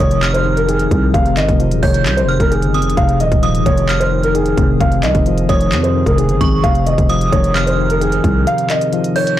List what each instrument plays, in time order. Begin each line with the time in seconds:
Already playing: tine electric piano C3 F3, analog synth pad F3 D#4 G#4, synth bell D#6
0.00 808-style bass F1, tine electric piano D#3, grand piano C#5, kick, closed hi-hat
0.11 closed hi-hat
0.22 tine electric piano C3, synth bell F6, clap, closed hi-hat
0.34 grand piano C5, closed hi-hat
0.45 tine electric piano D#3
0.57 grand piano A#4, closed hi-hat
0.68 tine electric piano D#3, grand piano G#4, closed hi-hat
0.79 closed hi-hat
0.91 808-style bass C2, tine electric piano C4, kick, closed hi-hat
1.14 808-style bass F1, tine electric piano C3, grand piano F5, kick, closed hi-hat
1.26 closed hi-hat
1.37 808-style bass G#1, tine electric piano D#3, grand piano D#5, clap, closed hi-hat
1.49 808-style bass F1, kick, closed hi-hat
1.60 tine electric piano F3, closed hi-hat
1.71 808-style bass D#1, closed hi-hat
1.83 808-style bass F1, tine electric piano D#3, grand piano C#5, synth bell G6, kick, closed hi-hat, open hi-hat
1.94 closed hi-hat
2.06 808-style bass C2, tine electric piano C3, clap, closed hi-hat
2.17 grand piano C5, closed hi-hat
2.23 808-style bass F1
2.29 tine electric piano D#3, synth bell F6
2.40 808-style bass F1, grand piano A#4, kick, closed hi-hat
2.51 tine electric piano D#3, grand piano G#4, closed hi-hat
2.62 808-style bass G1, closed hi-hat
2.74 tine electric piano C4, synth bell D#6, closed hi-hat
2.80 808-style bass F1, closed hi-hat
2.90 closed hi-hat
2.97 808-style bass F1, tine electric piano C3, grand piano F5, kick, closed hi-hat
3.09 closed hi-hat
3.20 808-style bass D#1, tine electric piano D#3, grand piano D#5, closed hi-hat
3.32 808-style bass D#1, kick, closed hi-hat
3.42 tine electric piano F3, synth bell D#6, closed hi-hat
3.55 closed hi-hat
3.66 808-style bass F1, tine electric piano D#3, grand piano C#5, kick, closed hi-hat
3.77 closed hi-hat
3.89 tine electric piano C3, synth bell F6, clap, closed hi-hat
4.00 grand piano C5, closed hi-hat
4.12 tine electric piano D#3
4.23 grand piano A#4, closed hi-hat
4.35 tine electric piano D#3, grand piano G#4, closed hi-hat
4.46 closed hi-hat
4.57 808-style bass F1, tine electric piano C4, kick, closed hi-hat
4.80 808-style bass F1, tine electric piano C3, grand piano F5, kick, closed hi-hat
4.92 closed hi-hat
5.03 808-style bass C2, tine electric piano D#3, grand piano D#5, clap, closed hi-hat
5.15 808-style bass F1, kick, closed hi-hat
5.26 tine electric piano F3, closed hi-hat
5.38 closed hi-hat
5.49 808-style bass F1, tine electric piano D#3, grand piano C#5, synth bell D#6, kick, closed hi-hat
5.61 closed hi-hat
5.72 808-style bass F2, tine electric piano C3, clap, closed hi-hat
5.83 grand piano C5, closed hi-hat
5.95 tine electric piano D#3
6.06 808-style bass F1, grand piano A#4, kick, closed hi-hat
6.18 tine electric piano D#3, grand piano G#4, closed hi-hat
6.29 808-style bass G1, closed hi-hat
6.41 808-style bass G#1, tine electric piano C4, synth bell C#6, kick, closed hi-hat
6.64 808-style bass F1, tine electric piano C3, analog synth pad D#4, grand piano F5, kick, closed hi-hat
6.75 closed hi-hat
6.86 tine electric piano D#3, grand piano D#5, closed hi-hat
6.98 808-style bass F1, kick, closed hi-hat
7.09 tine electric piano F3, synth bell D#6, closed hi-hat
7.21 closed hi-hat
7.32 808-style bass F1, tine electric piano D#3, grand piano C#5, kick, closed hi-hat
7.44 closed hi-hat
7.55 tine electric piano C3, synth bell F6, clap, closed hi-hat
7.67 grand piano C5, closed hi-hat
7.78 tine electric piano D#3
7.90 grand piano A#4, closed hi-hat
8.01 tine electric piano D#3, grand piano G#4, closed hi-hat
8.12 closed hi-hat
8.24 808-style bass C2, tine electric piano C4, kick, closed hi-hat
8.47 tine electric piano C3, grand piano F5, closed hi-hat
8.58 closed hi-hat
8.70 tine electric piano D#3, grand piano D#5, clap, closed hi-hat
8.81 closed hi-hat
8.93 tine electric piano F3, closed hi-hat
9.04 closed hi-hat
9.16 tine electric piano D#3, grand piano C#5, synth bell G6, closed hi-hat, open hi-hat
9.27 closed hi-hat